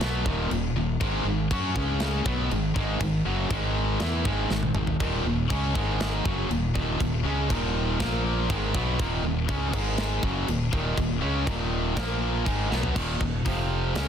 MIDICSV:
0, 0, Header, 1, 4, 480
1, 0, Start_track
1, 0, Key_signature, -6, "minor"
1, 0, Tempo, 498339
1, 969, Time_signature, 4, 2, 24, 8
1, 13563, End_track
2, 0, Start_track
2, 0, Title_t, "Distorted electric guitar"
2, 0, Program_c, 0, 30
2, 2, Note_on_c, 0, 47, 105
2, 13, Note_on_c, 0, 54, 102
2, 17, Note_on_c, 0, 59, 112
2, 237, Note_off_c, 0, 47, 0
2, 242, Note_off_c, 0, 54, 0
2, 245, Note_off_c, 0, 59, 0
2, 248, Note_on_c, 0, 39, 89
2, 254, Note_on_c, 0, 46, 100
2, 261, Note_on_c, 0, 51, 107
2, 477, Note_off_c, 0, 39, 0
2, 481, Note_off_c, 0, 46, 0
2, 487, Note_off_c, 0, 51, 0
2, 488, Note_on_c, 0, 39, 60
2, 493, Note_on_c, 0, 46, 74
2, 680, Note_off_c, 0, 39, 0
2, 683, Note_off_c, 0, 46, 0
2, 733, Note_on_c, 0, 39, 71
2, 739, Note_on_c, 0, 46, 74
2, 923, Note_off_c, 0, 39, 0
2, 926, Note_off_c, 0, 46, 0
2, 965, Note_on_c, 0, 44, 92
2, 970, Note_on_c, 0, 51, 92
2, 976, Note_on_c, 0, 56, 110
2, 1201, Note_off_c, 0, 44, 0
2, 1203, Note_off_c, 0, 51, 0
2, 1206, Note_off_c, 0, 56, 0
2, 1213, Note_on_c, 0, 44, 65
2, 1215, Note_on_c, 0, 51, 76
2, 1404, Note_off_c, 0, 44, 0
2, 1405, Note_off_c, 0, 51, 0
2, 1452, Note_on_c, 0, 54, 100
2, 1460, Note_on_c, 0, 61, 103
2, 1464, Note_on_c, 0, 66, 107
2, 1678, Note_off_c, 0, 61, 0
2, 1678, Note_on_c, 0, 49, 97
2, 1682, Note_off_c, 0, 54, 0
2, 1686, Note_on_c, 0, 56, 97
2, 1689, Note_on_c, 0, 61, 106
2, 1691, Note_off_c, 0, 66, 0
2, 2154, Note_off_c, 0, 49, 0
2, 2158, Note_on_c, 0, 47, 91
2, 2162, Note_off_c, 0, 56, 0
2, 2165, Note_off_c, 0, 61, 0
2, 2165, Note_on_c, 0, 54, 99
2, 2171, Note_on_c, 0, 59, 105
2, 2400, Note_off_c, 0, 47, 0
2, 2403, Note_off_c, 0, 54, 0
2, 2406, Note_off_c, 0, 59, 0
2, 2413, Note_on_c, 0, 44, 65
2, 2418, Note_on_c, 0, 51, 70
2, 2607, Note_off_c, 0, 44, 0
2, 2609, Note_off_c, 0, 51, 0
2, 2640, Note_on_c, 0, 44, 88
2, 2649, Note_on_c, 0, 51, 96
2, 2658, Note_on_c, 0, 56, 96
2, 2881, Note_off_c, 0, 44, 0
2, 2886, Note_off_c, 0, 51, 0
2, 2891, Note_off_c, 0, 56, 0
2, 2892, Note_on_c, 0, 44, 65
2, 2898, Note_on_c, 0, 51, 76
2, 3087, Note_off_c, 0, 44, 0
2, 3090, Note_off_c, 0, 51, 0
2, 3137, Note_on_c, 0, 42, 84
2, 3144, Note_on_c, 0, 49, 90
2, 3150, Note_on_c, 0, 54, 114
2, 3365, Note_off_c, 0, 49, 0
2, 3369, Note_on_c, 0, 44, 85
2, 3370, Note_off_c, 0, 54, 0
2, 3371, Note_off_c, 0, 42, 0
2, 3374, Note_on_c, 0, 51, 105
2, 3383, Note_on_c, 0, 56, 104
2, 3846, Note_off_c, 0, 44, 0
2, 3850, Note_off_c, 0, 51, 0
2, 3850, Note_on_c, 0, 52, 94
2, 3855, Note_off_c, 0, 56, 0
2, 3861, Note_on_c, 0, 59, 88
2, 3868, Note_on_c, 0, 64, 104
2, 4088, Note_off_c, 0, 52, 0
2, 4094, Note_off_c, 0, 59, 0
2, 4095, Note_on_c, 0, 44, 89
2, 4097, Note_off_c, 0, 64, 0
2, 4104, Note_on_c, 0, 51, 97
2, 4108, Note_on_c, 0, 56, 101
2, 4331, Note_off_c, 0, 44, 0
2, 4336, Note_off_c, 0, 51, 0
2, 4337, Note_off_c, 0, 56, 0
2, 4347, Note_on_c, 0, 44, 62
2, 4355, Note_on_c, 0, 51, 68
2, 4536, Note_off_c, 0, 44, 0
2, 4540, Note_off_c, 0, 51, 0
2, 4595, Note_on_c, 0, 44, 70
2, 4598, Note_on_c, 0, 51, 68
2, 4780, Note_off_c, 0, 44, 0
2, 4782, Note_off_c, 0, 51, 0
2, 4819, Note_on_c, 0, 39, 89
2, 4833, Note_on_c, 0, 46, 101
2, 4835, Note_on_c, 0, 51, 98
2, 5054, Note_off_c, 0, 39, 0
2, 5055, Note_off_c, 0, 46, 0
2, 5062, Note_off_c, 0, 51, 0
2, 5064, Note_on_c, 0, 39, 61
2, 5066, Note_on_c, 0, 46, 71
2, 5255, Note_off_c, 0, 39, 0
2, 5257, Note_off_c, 0, 46, 0
2, 5305, Note_on_c, 0, 49, 88
2, 5313, Note_on_c, 0, 56, 96
2, 5319, Note_on_c, 0, 61, 102
2, 5531, Note_off_c, 0, 49, 0
2, 5533, Note_off_c, 0, 56, 0
2, 5535, Note_on_c, 0, 44, 84
2, 5538, Note_on_c, 0, 51, 93
2, 5540, Note_off_c, 0, 61, 0
2, 5544, Note_on_c, 0, 56, 90
2, 6011, Note_on_c, 0, 42, 93
2, 6012, Note_off_c, 0, 44, 0
2, 6013, Note_off_c, 0, 51, 0
2, 6017, Note_off_c, 0, 56, 0
2, 6021, Note_on_c, 0, 49, 101
2, 6028, Note_on_c, 0, 54, 98
2, 6250, Note_off_c, 0, 42, 0
2, 6255, Note_off_c, 0, 49, 0
2, 6259, Note_off_c, 0, 54, 0
2, 6259, Note_on_c, 0, 39, 59
2, 6264, Note_on_c, 0, 46, 75
2, 6453, Note_off_c, 0, 39, 0
2, 6456, Note_off_c, 0, 46, 0
2, 6493, Note_on_c, 0, 39, 92
2, 6500, Note_on_c, 0, 46, 88
2, 6502, Note_on_c, 0, 51, 103
2, 6727, Note_off_c, 0, 39, 0
2, 6731, Note_off_c, 0, 46, 0
2, 6735, Note_off_c, 0, 51, 0
2, 6739, Note_on_c, 0, 39, 64
2, 6742, Note_on_c, 0, 46, 78
2, 6933, Note_off_c, 0, 39, 0
2, 6935, Note_off_c, 0, 46, 0
2, 6966, Note_on_c, 0, 49, 96
2, 6975, Note_on_c, 0, 56, 96
2, 6981, Note_on_c, 0, 61, 95
2, 7207, Note_off_c, 0, 49, 0
2, 7212, Note_off_c, 0, 56, 0
2, 7215, Note_off_c, 0, 61, 0
2, 7215, Note_on_c, 0, 39, 88
2, 7221, Note_on_c, 0, 46, 105
2, 7224, Note_on_c, 0, 51, 102
2, 7684, Note_off_c, 0, 46, 0
2, 7691, Note_off_c, 0, 39, 0
2, 7695, Note_on_c, 0, 46, 92
2, 7696, Note_off_c, 0, 51, 0
2, 7706, Note_on_c, 0, 53, 108
2, 7709, Note_on_c, 0, 58, 114
2, 8171, Note_off_c, 0, 46, 0
2, 8176, Note_off_c, 0, 53, 0
2, 8176, Note_on_c, 0, 44, 85
2, 8178, Note_off_c, 0, 58, 0
2, 8183, Note_on_c, 0, 51, 94
2, 8186, Note_on_c, 0, 56, 103
2, 8411, Note_off_c, 0, 44, 0
2, 8415, Note_off_c, 0, 51, 0
2, 8415, Note_on_c, 0, 47, 93
2, 8416, Note_off_c, 0, 56, 0
2, 8418, Note_on_c, 0, 54, 101
2, 8424, Note_on_c, 0, 59, 102
2, 8650, Note_off_c, 0, 47, 0
2, 8651, Note_on_c, 0, 39, 103
2, 8652, Note_off_c, 0, 54, 0
2, 8655, Note_off_c, 0, 59, 0
2, 8661, Note_on_c, 0, 46, 102
2, 8664, Note_on_c, 0, 51, 113
2, 8888, Note_off_c, 0, 39, 0
2, 8893, Note_off_c, 0, 46, 0
2, 8894, Note_off_c, 0, 51, 0
2, 8898, Note_on_c, 0, 39, 69
2, 8904, Note_on_c, 0, 46, 68
2, 9090, Note_off_c, 0, 39, 0
2, 9093, Note_off_c, 0, 46, 0
2, 9131, Note_on_c, 0, 49, 99
2, 9139, Note_on_c, 0, 56, 96
2, 9143, Note_on_c, 0, 61, 108
2, 9368, Note_off_c, 0, 49, 0
2, 9368, Note_on_c, 0, 44, 98
2, 9376, Note_off_c, 0, 56, 0
2, 9376, Note_on_c, 0, 51, 106
2, 9381, Note_off_c, 0, 61, 0
2, 9381, Note_on_c, 0, 56, 92
2, 9844, Note_off_c, 0, 44, 0
2, 9848, Note_off_c, 0, 51, 0
2, 9850, Note_off_c, 0, 56, 0
2, 9850, Note_on_c, 0, 42, 90
2, 9862, Note_on_c, 0, 49, 95
2, 9865, Note_on_c, 0, 54, 99
2, 10085, Note_off_c, 0, 42, 0
2, 10091, Note_off_c, 0, 49, 0
2, 10093, Note_off_c, 0, 54, 0
2, 10100, Note_on_c, 0, 39, 60
2, 10102, Note_on_c, 0, 46, 73
2, 10289, Note_off_c, 0, 39, 0
2, 10290, Note_off_c, 0, 46, 0
2, 10335, Note_on_c, 0, 39, 95
2, 10341, Note_on_c, 0, 46, 98
2, 10351, Note_on_c, 0, 51, 109
2, 10553, Note_off_c, 0, 39, 0
2, 10556, Note_off_c, 0, 46, 0
2, 10564, Note_on_c, 0, 39, 63
2, 10568, Note_on_c, 0, 46, 73
2, 10575, Note_off_c, 0, 51, 0
2, 10760, Note_off_c, 0, 39, 0
2, 10762, Note_off_c, 0, 46, 0
2, 10797, Note_on_c, 0, 49, 97
2, 10806, Note_on_c, 0, 56, 99
2, 10812, Note_on_c, 0, 61, 92
2, 11037, Note_off_c, 0, 49, 0
2, 11041, Note_off_c, 0, 56, 0
2, 11044, Note_off_c, 0, 61, 0
2, 11050, Note_on_c, 0, 39, 86
2, 11055, Note_on_c, 0, 46, 96
2, 11059, Note_on_c, 0, 51, 104
2, 11510, Note_off_c, 0, 46, 0
2, 11522, Note_off_c, 0, 39, 0
2, 11522, Note_on_c, 0, 46, 91
2, 11526, Note_off_c, 0, 51, 0
2, 11531, Note_on_c, 0, 53, 97
2, 11532, Note_on_c, 0, 58, 105
2, 11997, Note_off_c, 0, 46, 0
2, 12001, Note_off_c, 0, 53, 0
2, 12001, Note_on_c, 0, 44, 83
2, 12002, Note_off_c, 0, 58, 0
2, 12010, Note_on_c, 0, 51, 86
2, 12016, Note_on_c, 0, 56, 88
2, 12237, Note_off_c, 0, 44, 0
2, 12241, Note_off_c, 0, 51, 0
2, 12244, Note_off_c, 0, 56, 0
2, 12244, Note_on_c, 0, 47, 88
2, 12251, Note_on_c, 0, 54, 99
2, 12255, Note_on_c, 0, 59, 94
2, 12477, Note_on_c, 0, 39, 86
2, 12478, Note_off_c, 0, 47, 0
2, 12481, Note_off_c, 0, 54, 0
2, 12483, Note_off_c, 0, 59, 0
2, 12492, Note_on_c, 0, 46, 88
2, 12497, Note_on_c, 0, 51, 96
2, 12714, Note_off_c, 0, 39, 0
2, 12721, Note_off_c, 0, 46, 0
2, 12724, Note_off_c, 0, 51, 0
2, 12727, Note_on_c, 0, 39, 57
2, 12734, Note_on_c, 0, 46, 64
2, 12917, Note_off_c, 0, 39, 0
2, 12921, Note_off_c, 0, 46, 0
2, 12954, Note_on_c, 0, 41, 89
2, 12962, Note_on_c, 0, 48, 80
2, 12967, Note_on_c, 0, 53, 95
2, 13427, Note_off_c, 0, 48, 0
2, 13431, Note_off_c, 0, 41, 0
2, 13431, Note_on_c, 0, 49, 94
2, 13437, Note_off_c, 0, 53, 0
2, 13441, Note_on_c, 0, 56, 89
2, 13444, Note_on_c, 0, 61, 99
2, 13563, Note_off_c, 0, 49, 0
2, 13563, Note_off_c, 0, 56, 0
2, 13563, Note_off_c, 0, 61, 0
2, 13563, End_track
3, 0, Start_track
3, 0, Title_t, "Fretless electric bass"
3, 0, Program_c, 1, 35
3, 7, Note_on_c, 1, 35, 91
3, 230, Note_off_c, 1, 35, 0
3, 249, Note_on_c, 1, 27, 95
3, 472, Note_off_c, 1, 27, 0
3, 489, Note_on_c, 1, 27, 84
3, 709, Note_off_c, 1, 27, 0
3, 715, Note_on_c, 1, 27, 86
3, 945, Note_off_c, 1, 27, 0
3, 971, Note_on_c, 1, 32, 94
3, 1194, Note_off_c, 1, 32, 0
3, 1200, Note_on_c, 1, 32, 75
3, 1428, Note_off_c, 1, 32, 0
3, 1453, Note_on_c, 1, 42, 98
3, 1676, Note_off_c, 1, 42, 0
3, 1693, Note_on_c, 1, 37, 103
3, 2141, Note_off_c, 1, 37, 0
3, 2170, Note_on_c, 1, 35, 96
3, 2396, Note_off_c, 1, 35, 0
3, 2426, Note_on_c, 1, 32, 82
3, 2645, Note_off_c, 1, 32, 0
3, 2657, Note_on_c, 1, 32, 99
3, 2880, Note_off_c, 1, 32, 0
3, 2892, Note_on_c, 1, 32, 86
3, 3118, Note_off_c, 1, 32, 0
3, 3139, Note_on_c, 1, 30, 85
3, 3362, Note_off_c, 1, 30, 0
3, 3373, Note_on_c, 1, 32, 100
3, 3823, Note_off_c, 1, 32, 0
3, 3850, Note_on_c, 1, 40, 92
3, 4078, Note_off_c, 1, 40, 0
3, 4095, Note_on_c, 1, 32, 95
3, 4321, Note_off_c, 1, 32, 0
3, 4329, Note_on_c, 1, 32, 79
3, 4558, Note_off_c, 1, 32, 0
3, 4569, Note_on_c, 1, 32, 81
3, 4798, Note_off_c, 1, 32, 0
3, 4814, Note_on_c, 1, 27, 90
3, 5041, Note_off_c, 1, 27, 0
3, 5050, Note_on_c, 1, 27, 76
3, 5279, Note_off_c, 1, 27, 0
3, 5299, Note_on_c, 1, 37, 98
3, 5524, Note_off_c, 1, 37, 0
3, 5543, Note_on_c, 1, 32, 101
3, 5990, Note_off_c, 1, 32, 0
3, 6021, Note_on_c, 1, 30, 94
3, 6245, Note_off_c, 1, 30, 0
3, 6260, Note_on_c, 1, 27, 77
3, 6485, Note_off_c, 1, 27, 0
3, 6508, Note_on_c, 1, 27, 100
3, 6729, Note_off_c, 1, 27, 0
3, 6743, Note_on_c, 1, 27, 79
3, 6966, Note_off_c, 1, 27, 0
3, 6978, Note_on_c, 1, 37, 91
3, 7203, Note_off_c, 1, 37, 0
3, 7226, Note_on_c, 1, 27, 93
3, 7670, Note_off_c, 1, 27, 0
3, 7709, Note_on_c, 1, 34, 97
3, 8152, Note_off_c, 1, 34, 0
3, 8184, Note_on_c, 1, 32, 88
3, 8405, Note_off_c, 1, 32, 0
3, 8425, Note_on_c, 1, 35, 99
3, 8646, Note_off_c, 1, 35, 0
3, 8661, Note_on_c, 1, 27, 101
3, 8883, Note_off_c, 1, 27, 0
3, 8890, Note_on_c, 1, 27, 80
3, 9117, Note_off_c, 1, 27, 0
3, 9141, Note_on_c, 1, 37, 92
3, 9362, Note_off_c, 1, 37, 0
3, 9376, Note_on_c, 1, 32, 100
3, 9822, Note_off_c, 1, 32, 0
3, 9854, Note_on_c, 1, 30, 99
3, 10077, Note_off_c, 1, 30, 0
3, 10099, Note_on_c, 1, 27, 84
3, 10320, Note_off_c, 1, 27, 0
3, 10333, Note_on_c, 1, 27, 100
3, 10556, Note_off_c, 1, 27, 0
3, 10571, Note_on_c, 1, 27, 85
3, 10794, Note_off_c, 1, 27, 0
3, 10809, Note_on_c, 1, 37, 83
3, 11033, Note_off_c, 1, 37, 0
3, 11047, Note_on_c, 1, 27, 95
3, 11494, Note_off_c, 1, 27, 0
3, 11524, Note_on_c, 1, 34, 89
3, 11971, Note_off_c, 1, 34, 0
3, 12008, Note_on_c, 1, 32, 91
3, 12230, Note_off_c, 1, 32, 0
3, 12248, Note_on_c, 1, 35, 101
3, 12470, Note_off_c, 1, 35, 0
3, 12480, Note_on_c, 1, 27, 86
3, 12705, Note_off_c, 1, 27, 0
3, 12719, Note_on_c, 1, 27, 70
3, 12945, Note_off_c, 1, 27, 0
3, 12962, Note_on_c, 1, 29, 90
3, 13408, Note_off_c, 1, 29, 0
3, 13438, Note_on_c, 1, 37, 86
3, 13563, Note_off_c, 1, 37, 0
3, 13563, End_track
4, 0, Start_track
4, 0, Title_t, "Drums"
4, 7, Note_on_c, 9, 49, 56
4, 13, Note_on_c, 9, 38, 101
4, 103, Note_off_c, 9, 49, 0
4, 109, Note_off_c, 9, 38, 0
4, 248, Note_on_c, 9, 36, 105
4, 345, Note_off_c, 9, 36, 0
4, 492, Note_on_c, 9, 49, 55
4, 588, Note_off_c, 9, 49, 0
4, 971, Note_on_c, 9, 36, 112
4, 972, Note_on_c, 9, 49, 60
4, 1068, Note_off_c, 9, 36, 0
4, 1068, Note_off_c, 9, 49, 0
4, 1453, Note_on_c, 9, 36, 101
4, 1458, Note_on_c, 9, 49, 66
4, 1550, Note_off_c, 9, 36, 0
4, 1554, Note_off_c, 9, 49, 0
4, 1692, Note_on_c, 9, 36, 117
4, 1789, Note_off_c, 9, 36, 0
4, 1925, Note_on_c, 9, 49, 59
4, 1931, Note_on_c, 9, 38, 105
4, 2021, Note_off_c, 9, 49, 0
4, 2027, Note_off_c, 9, 38, 0
4, 2174, Note_on_c, 9, 36, 111
4, 2271, Note_off_c, 9, 36, 0
4, 2421, Note_on_c, 9, 49, 58
4, 2517, Note_off_c, 9, 49, 0
4, 2657, Note_on_c, 9, 36, 100
4, 2754, Note_off_c, 9, 36, 0
4, 2896, Note_on_c, 9, 36, 92
4, 2897, Note_on_c, 9, 49, 60
4, 2993, Note_off_c, 9, 36, 0
4, 2993, Note_off_c, 9, 49, 0
4, 3376, Note_on_c, 9, 36, 102
4, 3377, Note_on_c, 9, 49, 59
4, 3473, Note_off_c, 9, 36, 0
4, 3474, Note_off_c, 9, 49, 0
4, 3851, Note_on_c, 9, 49, 55
4, 3857, Note_on_c, 9, 38, 110
4, 3947, Note_off_c, 9, 49, 0
4, 3953, Note_off_c, 9, 38, 0
4, 4096, Note_on_c, 9, 36, 106
4, 4193, Note_off_c, 9, 36, 0
4, 4339, Note_on_c, 9, 38, 60
4, 4435, Note_off_c, 9, 38, 0
4, 4457, Note_on_c, 9, 48, 67
4, 4553, Note_off_c, 9, 48, 0
4, 4571, Note_on_c, 9, 45, 89
4, 4667, Note_off_c, 9, 45, 0
4, 4693, Note_on_c, 9, 43, 82
4, 4790, Note_off_c, 9, 43, 0
4, 4819, Note_on_c, 9, 36, 100
4, 4819, Note_on_c, 9, 49, 61
4, 4915, Note_off_c, 9, 36, 0
4, 4916, Note_off_c, 9, 49, 0
4, 5299, Note_on_c, 9, 49, 60
4, 5301, Note_on_c, 9, 36, 102
4, 5395, Note_off_c, 9, 49, 0
4, 5397, Note_off_c, 9, 36, 0
4, 5543, Note_on_c, 9, 36, 113
4, 5639, Note_off_c, 9, 36, 0
4, 5782, Note_on_c, 9, 49, 56
4, 5787, Note_on_c, 9, 38, 106
4, 5878, Note_off_c, 9, 49, 0
4, 5884, Note_off_c, 9, 38, 0
4, 6024, Note_on_c, 9, 36, 108
4, 6121, Note_off_c, 9, 36, 0
4, 6268, Note_on_c, 9, 49, 60
4, 6364, Note_off_c, 9, 49, 0
4, 6506, Note_on_c, 9, 36, 104
4, 6603, Note_off_c, 9, 36, 0
4, 6747, Note_on_c, 9, 36, 91
4, 6753, Note_on_c, 9, 49, 67
4, 6843, Note_off_c, 9, 36, 0
4, 6849, Note_off_c, 9, 49, 0
4, 7226, Note_on_c, 9, 36, 107
4, 7231, Note_on_c, 9, 49, 65
4, 7322, Note_off_c, 9, 36, 0
4, 7327, Note_off_c, 9, 49, 0
4, 7706, Note_on_c, 9, 49, 60
4, 7708, Note_on_c, 9, 36, 104
4, 7712, Note_on_c, 9, 38, 110
4, 7803, Note_off_c, 9, 49, 0
4, 7804, Note_off_c, 9, 36, 0
4, 7809, Note_off_c, 9, 38, 0
4, 8187, Note_on_c, 9, 36, 103
4, 8192, Note_on_c, 9, 49, 59
4, 8283, Note_off_c, 9, 36, 0
4, 8289, Note_off_c, 9, 49, 0
4, 8424, Note_on_c, 9, 36, 109
4, 8520, Note_off_c, 9, 36, 0
4, 8664, Note_on_c, 9, 36, 101
4, 8664, Note_on_c, 9, 49, 62
4, 8760, Note_off_c, 9, 36, 0
4, 8760, Note_off_c, 9, 49, 0
4, 9138, Note_on_c, 9, 49, 54
4, 9139, Note_on_c, 9, 36, 107
4, 9234, Note_off_c, 9, 49, 0
4, 9236, Note_off_c, 9, 36, 0
4, 9373, Note_on_c, 9, 49, 98
4, 9376, Note_on_c, 9, 36, 111
4, 9470, Note_off_c, 9, 49, 0
4, 9473, Note_off_c, 9, 36, 0
4, 9609, Note_on_c, 9, 49, 58
4, 9615, Note_on_c, 9, 38, 106
4, 9706, Note_off_c, 9, 49, 0
4, 9711, Note_off_c, 9, 38, 0
4, 9853, Note_on_c, 9, 36, 105
4, 9949, Note_off_c, 9, 36, 0
4, 10096, Note_on_c, 9, 49, 62
4, 10193, Note_off_c, 9, 49, 0
4, 10334, Note_on_c, 9, 36, 109
4, 10430, Note_off_c, 9, 36, 0
4, 10571, Note_on_c, 9, 36, 96
4, 10572, Note_on_c, 9, 49, 61
4, 10668, Note_off_c, 9, 36, 0
4, 10668, Note_off_c, 9, 49, 0
4, 11049, Note_on_c, 9, 36, 101
4, 11053, Note_on_c, 9, 49, 67
4, 11145, Note_off_c, 9, 36, 0
4, 11150, Note_off_c, 9, 49, 0
4, 11528, Note_on_c, 9, 36, 105
4, 11530, Note_on_c, 9, 49, 63
4, 11536, Note_on_c, 9, 38, 106
4, 11624, Note_off_c, 9, 36, 0
4, 11627, Note_off_c, 9, 49, 0
4, 11632, Note_off_c, 9, 38, 0
4, 12005, Note_on_c, 9, 36, 93
4, 12011, Note_on_c, 9, 49, 60
4, 12102, Note_off_c, 9, 36, 0
4, 12107, Note_off_c, 9, 49, 0
4, 12254, Note_on_c, 9, 38, 62
4, 12350, Note_off_c, 9, 38, 0
4, 12361, Note_on_c, 9, 43, 85
4, 12458, Note_off_c, 9, 43, 0
4, 12483, Note_on_c, 9, 36, 99
4, 12486, Note_on_c, 9, 57, 105
4, 12579, Note_off_c, 9, 36, 0
4, 12582, Note_off_c, 9, 57, 0
4, 12721, Note_on_c, 9, 36, 86
4, 12818, Note_off_c, 9, 36, 0
4, 12962, Note_on_c, 9, 36, 97
4, 12966, Note_on_c, 9, 46, 51
4, 13059, Note_off_c, 9, 36, 0
4, 13062, Note_off_c, 9, 46, 0
4, 13442, Note_on_c, 9, 46, 54
4, 13447, Note_on_c, 9, 38, 96
4, 13538, Note_off_c, 9, 46, 0
4, 13544, Note_off_c, 9, 38, 0
4, 13563, End_track
0, 0, End_of_file